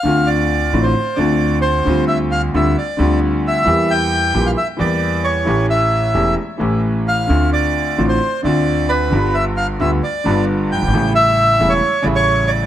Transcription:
<<
  \new Staff \with { instrumentName = "Bandoneon" } { \time 4/4 \key d \minor \tempo 4 = 133 f''8 d''4~ d''16 c''8. d''4 c''8~ | c''8 e''8 f''8 e''8 d''4 r8 e''8~ | e''8 g''4~ g''16 f''16 e''8 d''4 cis''8~ | cis''8 e''4. r4. f''8~ |
f''8 d''4~ d''16 c''8. d''4 b'8~ | b'8 e''8 f''8 e''8 d''4 r8 g''8~ | g''8 e''4~ e''16 cis''8. d''16 cis''8. d''8 | }
  \new Staff \with { instrumentName = "Grand piano" } { \clef bass \time 4/4 \key d \minor << { <d, d a c' f'>4. <a,, a, d a c' f'>8 r8 <d, d a c' f'>4. | <d, d g c' f'>4. <d, d g c' f'>8 r8 <d, d g c' f'>4. | <e, e g bes g'>4. <bes,, bes, e g bes g'>8 r8 <e, e g bes g'>4. | <a,, a, e a cis' g'>4. <e,, e, e a cis' g'>8 r8 <a,, a, e a cis' g'>4. |
<d, d a c' f'>4. <a,, a, d a c' f'>8 r8 <d, d a c' f'>4. | <g,, g, d g b f'>4. <d, d g b f'>8 r8 <g,, g, d g b f'>4. | <a,, a, cis g a e'>4. <e,, e, cis g a e'>8 r8 <a,, a, cis g a e'>4. | } \\ { r1 | r1 | r1 | r1 |
r1 | r2. r8 r32 fis,,32 g,,32 gis,,32 | r1 | } >> }
  \new Staff \with { instrumentName = "Upright bass" } { \clef bass \time 4/4 \key d \minor d,4~ d,16. r32 a,,16. r8 r32 d,4~ d,16. r32 | d,4~ d,16. r32 d,16. r8 r32 d,4~ d,16. r32 | e,4~ e,16. r32 bes,,16. r8 r32 e,4~ e,16. r32 | a,,4~ a,,16. r32 e,,16. r8 r32 a,,4~ a,,16. r32 |
d,4~ d,16. r32 a,,16. r8 r32 d,4~ d,16. r32 | g,,4~ g,,16. r32 d,16. r8 r32 g,,4~ g,,32 fis,,32 g,,32 gis,,32 | a,,4~ a,,16. r32 e,,16. r8 r32 a,,4~ a,,16. r32 | }
>>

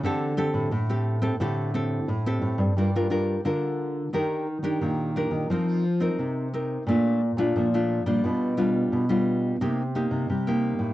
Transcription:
<<
  \new Staff \with { instrumentName = "Nylon-string guitar" } { \time 4/4 \key g \minor \tempo 4 = 88 << { <c' g' a'>8 <c' g' a'>8 r16 <c' g' a'>8 <c' g' a'>16 <c' g' a'>8 <c' g' a'>8 r16 <c' g' a'>8. | <d' f' bes'>16 <d' f' bes'>16 <d' f' bes'>8 <d' f' bes'>4 <d' g' bes'>8 r16 <d' g' bes'>8. <d' g' bes'>8 | <c' ees' bes'>8 r16 <c' ees' bes'>8. <c' ees' bes'>8 <a d' f'>8 r16 <a d' f'>8 <a d' f'>8 <g d' f'>16~ | <g d' f'>8 <g d' f'>8. <g d' f'>8. <bes ees' g'>16 r16 <bes ees' g'>8 r16 <bes ees' g'>8. | } \\ { d4 a,4 d4 a,4 | g4 d4 ees4 bes,4 | f4 c4 bes,4 f4 | b,4 b,4 c4 g4 | } >> }
  \new Staff \with { instrumentName = "Nylon-string guitar" } { \clef bass \time 4/4 \key g \minor d8. a,16 a,4 a,4 a,8 a,16 g,16 | g,4 d4 ees8. ees16 ees8. ees16 | f4 c4 bes,8. bes,16 bes,8. bes,16 | b,4 b,4 c8. c16 c8. a,16 | }
>>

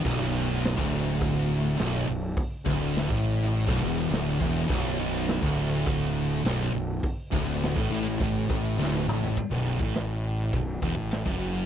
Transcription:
<<
  \new Staff \with { instrumentName = "Distorted electric guitar" } { \clef bass \time 4/4 \key b \minor \tempo 4 = 103 b,,4~ b,,16 d,4.~ d,16 b,,8 b,,8 | r8 d,8. a,4 b,,16 e,8 d,8 e,8 | b,,4~ b,,16 d,4.~ d,16 b,,8 b,,8 | r8 d,8. a,16 a,8 a,8 a,8 d,8 a,8 |
r16 b,,8 a,4~ a,16 b,,8 e,16 a,8 fis,8. | }
  \new Staff \with { instrumentName = "Distorted electric guitar" } { \clef bass \time 4/4 \key b \minor b,,4~ b,,16 d,4.~ d,16 b,,8 b,,8 | r8 d,8. a,4 b,,16 e,8 d,8 e,8 | b,,4~ b,,16 d,4.~ d,16 b,,8 b,,8 | r8 d,8. a,16 a,8 a,8 a,8 d,8 a,8 |
r16 b,,8 a,4~ a,16 b,,8 e,16 a,8 fis,8. | }
  \new Staff \with { instrumentName = "Distorted electric guitar" } { \clef bass \time 4/4 \key b \minor b,,4~ b,,16 d,4.~ d,16 b,,8 b,,8 | r8 d,8. a,4 b,,16 e,8 d,8 e,8 | b,,4~ b,,16 d,4.~ d,16 b,,8 b,,8 | r8 d,8. a,16 a,8 a,8 a,8 d,8 a,8 |
r1 | }
  \new Staff \with { instrumentName = "Fingered electric bass" } { \clef bass \time 4/4 \key b \minor b,,,4~ b,,,16 d,,4.~ d,,16 b,,,8 b,,,8 | r8 d,,8. a,,4 b,,,16 e,,8 d,,8 e,,8 | b,,,4~ b,,,16 d,,4.~ d,,16 b,,,8 b,,,8 | r8 d,,8. a,,16 a,,8 a,,8 a,,8 d,,8 a,,8 |
r16 b,,,8 a,,4~ a,,16 b,,,8 e,,16 a,,8 fis,,8. | }
  \new DrumStaff \with { instrumentName = "Drums" } \drummode { \time 4/4 <cymc bd>4 <hho sn>16 bd8. <hho bd>4 <hho sn>4 | <hho bd>8 bd8 <hho sn>16 bd8 sn16 hho16 bd8. <hho sn>8 bd8 | <hho bd>4 <hho sn>16 bd8. <hho bd>4 <hho sn>4 | <hho bd>8 bd8 <hho sn>16 bd8 sn16 <hho bd>8 bd8 sn16 tommh16 toml16 tomfh16 |
<bd cymr>16 bd16 cymr16 <bd sn>16 <cymr sn>8 cymr8 <bd cymr>8 <bd cymr>8 <cymr sn>16 bd16 cymr8 | }
>>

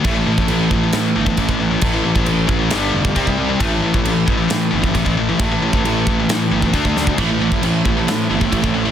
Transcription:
<<
  \new Staff \with { instrumentName = "String section" } { \time 4/4 \key a \minor \tempo 4 = 134 r1 | r1 | r1 | r1 |
<a c' e' c'' e''>1 | }
  \new Staff \with { instrumentName = "Distorted electric guitar" } { \clef bass \time 4/4 \key a \minor r1 | r1 | r1 | r1 |
<a, e a>16 <a, e>16 <a, e>16 <a, e>16 <a, e>8 <a, e>16 <a, e>16 <a, e>8 <a, e>16 <a, e>16 <a, e>16 <a, e>16 <a, e>16 <a, e>16 | }
  \new Staff \with { instrumentName = "Overdriven electric guitar" } { \clef bass \time 4/4 \key a \minor <a, e a>1 | <a, e a>2 <g, d g>4 <c g c'>4 | <a, e a>1 | <a, e a>2. <d a d'>4 |
<a, e a>1 | }
  \new Staff \with { instrumentName = "Distorted electric guitar" } { \clef bass \time 4/4 \key a \minor <a, e a>16 <a, e>16 <a, e>16 <a, e>16 <a, e>8 <a, e>16 <a, e>16 <a, e>8 <a, e>16 <a, e>16 <a, e>16 <a, e>16 <a, e>16 <a, e>16 | <a, e>16 <a, e>16 <a, e>16 <a, e>16 <a, e>8 <a, e>16 <a, e>16 <g, d g>8 <g, d>16 <g, d>16 <c g c'>16 <c g>16 <c g>16 <c g>16 | <a, e a>16 <a, e>16 <a, e>16 <a, e>16 <a, e>8 <a, e>16 <a, e>16 <a, e>8 <a, e>16 <a, e>16 <a, e>16 <a, e>16 <a, e>16 <a, e>16 | <a, e>16 <a, e>16 <a, e>16 <a, e>16 <a, e>8 <a, e>16 <a, e>16 <a, e>8 <a, e>16 <a, e>16 <d a d'>16 <d a>16 <d a>16 <d a>16 |
<a, e a>16 <a, e>16 <a, e>16 <a, e>16 <a, e>8 <a, e>16 <a, e>16 <a, e>8 <a, e>16 <a, e>16 <a, e>16 <a, e>16 <a, e>16 <a, e>16 | }
  \new Staff \with { instrumentName = "Picked electric bass" } { \clef bass \time 4/4 \key a \minor a,,8 a,,8 a,,8 a,,8 a,8 g,,8 a,,4 | a,,8 a,,8 a,,8 a,,8 g,,8 f,,8 c,4 | a,,8 a,,8 a,,8 a,,8 a,8 g,,8 a,,4 | a,,8 a,,8 a,,8 a,,8 a,8 g,,8 d,4 |
a,,8 a,,8 a,,8 a,,8 a,8 g,,8 a,,4 | }
  \new DrumStaff \with { instrumentName = "Drums" } \drummode { \time 4/4 <cymc bd>8. bd16 cymc8 bd8 <cymc sn>8. bd16 <cymc bd>16 bd8. | <cymc bd>8. bd16 cymc8 bd8 <cymc sn>8. bd16 <cymc bd>16 bd8. | <cymc bd>8. bd16 cymc8 bd8 <cymc sn>8. bd16 <cymc bd>16 bd8. | <cymc bd>8. bd16 cymc8 bd8 <cymc sn>8. bd16 <cymc bd>16 bd16 sn16 bd16 |
<cymc bd>8. bd16 cymc8 bd8 <cymc sn>8. bd16 <cymc bd>16 bd8. | }
>>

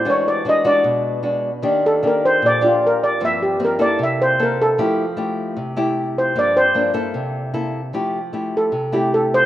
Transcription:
<<
  \new Staff \with { instrumentName = "Steel pan" } { \time 4/4 \key f \major \tempo 4 = 152 des''8 d''8 ees''8 d''4 r4. | r8 a'8 bes'8 c''8 d''8 f'8 bes'8 d''8 | e''8 g'8 bes'8 d''8 e''8 c''8 bes'8 a'8~ | a'4 r2 r8 c''8 |
d''8 c''4. r2 | r4. a'4 g'8 a'8 c''8 | }
  \new Staff \with { instrumentName = "Nylon-string guitar" } { \time 4/4 \key f \major << { <gis d' fis'>4 <gis d' fis'>8 <gis d' fis'>4. <gis d' fis'>8 r8 | <bes d' g'>4 <bes d' g'>4 r8 <bes d' g'>4. | <f bes c'>4 <f bes c'>8 <bes e' a'>4. <bes e' a'>4 | <a e' g'>8 r8 <a e' g'>4. <a e' g'>4. |
<f bes d'>8 r8 <f bes d'>8 <bes e' a'>4. <bes e' a'>8 r8 | <a e' g'>8 r8 <a e' g'>4 r8 <a e' g'>4. | } \\ { e2 b,2 | ees2 bes,2 | g,2 c2 | f2 c2 |
g,2 c2 | f2 c2 | } >> }
>>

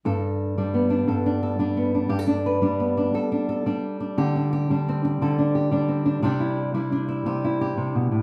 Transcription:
\new Staff \with { instrumentName = "Nylon-string guitar" } { \time 12/8 \key g \major \tempo 4. = 117 << { a'4 r8 d'8 b8 d'8 a'8 d'8 a'8 d'8 b8 d'8 | g'16 a'16 d'8 b'8 d'8 b8 d'8 a'8 d'8 a'8 d'4 d'8 | g'8 d'8 g'8 d'8 c'4 a'8 d'8 g'8 d'8 c'8 d'8 | <g d' g'>8 e'4 e'8 d'8 e'8 g'8 e'8 g'2 | } \\ { g,4. g4. g,4. g4. | g,4. g2. g4. | d4. g4. d4. g4. | c4. g4. c4. c8 b,8 a,8 | } >> }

